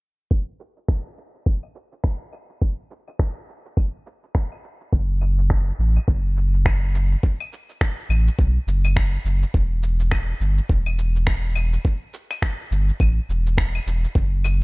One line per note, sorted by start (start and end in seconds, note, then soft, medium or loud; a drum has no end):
0.31 kick medium
0.31 shaker soft
0.60 shaker medium
0.77 shaker soft
0.88 finger snap medium
0.88 kick medium
0.88 claves medium
0.88 shaker soft
1.18 shaker medium
1.35 shaker soft
1.46 kick medium
1.46 shaker soft
1.63 claves medium
1.75 shaker medium
1.92 shaker soft
2.04 finger snap medium
2.04 kick medium
2.33 claves medium
2.33 shaker medium
2.50 shaker soft
2.62 kick medium
2.62 shaker soft
2.91 shaker medium
3.08 claves medium
3.08 shaker soft
3.19 finger snap loud
3.19 kick loud
3.49 shaker medium
3.66 shaker soft
3.77 kick loud
3.77 claves medium
3.77 shaker soft
4.07 shaker medium
4.23 shaker soft
4.35 finger snap medium
4.35 kick loud
4.35 shaker soft
4.52 claves medium
4.64 shaker medium
4.81 shaker soft
4.92 5.72 F#1 medium
4.92 kick medium
4.92 shaker soft
5.21 claves medium
5.21 shaker medium
5.38 shaker soft
5.50 finger snap loud
5.50 kick loud
5.79 5.99 A1 medium
5.79 shaker medium
5.96 claves medium
5.96 shaker soft
6.08 7.16 F#1 medium
6.08 kick loud
6.08 shaker soft
6.37 shaker medium
6.54 shaker soft
6.66 finger snap loud
6.66 kick loud
6.66 claves medium
6.66 shaker soft
6.95 shaker medium
7.12 shaker soft
7.23 kick medium
7.23 shaker soft
7.40 claves medium
7.53 shaker medium
7.69 shaker soft
7.81 finger snap medium
7.81 kick loud
7.81 shaker soft
8.09 8.29 A1 loud
8.09 claves medium
8.09 shaker medium
8.28 shaker soft
8.39 8.58 B1 medium
8.39 kick loud
8.39 shaker soft
8.67 9.18 F#1 medium
8.67 shaker medium
8.85 claves medium
8.85 shaker soft
8.96 finger snap medium
8.96 kick loud
8.96 shaker soft
9.25 9.45 F#1 medium
9.25 shaker medium
9.43 shaker soft
9.54 10.33 E1 medium
9.54 kick medium
9.54 shaker soft
9.83 shaker medium
10.00 shaker soft
10.11 finger snap loud
10.11 kick loud
10.11 claves medium
10.11 shaker soft
10.40 10.60 G1 medium
10.40 shaker medium
10.58 shaker soft
10.69 11.77 E1 medium
10.69 kick medium
10.69 shaker soft
10.86 claves medium
10.98 shaker medium
11.16 shaker soft
11.27 finger snap medium
11.27 kick loud
11.27 shaker soft
11.55 claves medium
11.55 shaker medium
11.73 shaker soft
11.85 kick medium
11.85 shaker soft
12.14 shaker medium
12.31 finger snap soft
12.31 claves medium
12.31 shaker soft
12.42 finger snap loud
12.42 kick loud
12.42 shaker soft
12.71 12.91 G1 loud
12.71 shaker medium
12.89 shaker soft
13.00 13.20 A1 medium
13.00 kick loud
13.00 claves medium
13.00 shaker soft
13.29 13.79 E1 medium
13.29 shaker medium
13.47 shaker soft
13.58 finger snap loud
13.58 kick loud
13.58 shaker soft
13.75 claves medium
13.87 14.06 E1 medium
13.87 shaker medium
14.04 shaker soft
14.15 14.63 F#1 medium
14.15 kick loud
14.15 shaker soft
14.44 claves medium
14.44 shaker medium